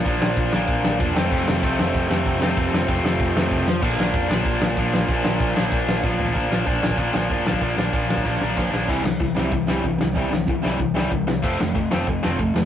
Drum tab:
CC |----------------|x---------------|----------------|x---------------|
RD |x---x---x---x---|----x---x---x---|x---x---x---x---|----x---x---x---|
HH |----------------|----------------|----------------|----------------|
SD |--o---o---o---o-|--o---o---o---o-|--o---o---o---o-|--o---o---o---o-|
FT |----------------|----------------|----------------|----------------|
BD |o---o---o---o---|o---o---o---o---|o---o---o---o---|o---o---o---o---|

CC |----------------|----------------|----------------|x---------------|
RD |x---x---x-------|----------------|----------------|----------------|
HH |----------------|o---o---o---o---|o---o-----------|----o---o---o---|
SD |--o---o---o-o---|--o---o---o---o-|--o---o-o-o-o-o-|--o---o---o---o-|
FT |--------------o-|----------------|----------------|----------------|
BD |o---o---o---o---|o---o--oo---o--o|o---o--oo---o---|o---o---o---o---|

CC |----------------|x---------------|
RD |----------------|----------------|
HH |o---o---o---o---|----o---o---o---|
SD |--o---o---o---o-|--o---o---o---o-|
FT |----------------|----------------|
BD |o---o---o---o---|o---o---o---o---|